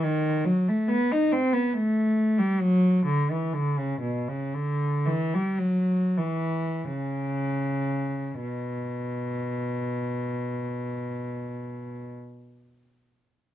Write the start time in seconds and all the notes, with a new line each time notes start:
0.03 D#3
0.45 F#3
0.68 A3
0.88 B3
1.12 D#4
1.32 C4
1.53 B3
1.72 A3
2.38 G3
2.61 F#3
3.06 D3
3.30 E3
3.53 D3
3.78 C#3
4.02 B2
4.28 C#3
4.54 D3
5.06 E3
5.34 G3
5.59 F#3
6.18 E3
6.84 C#3
8.42 B2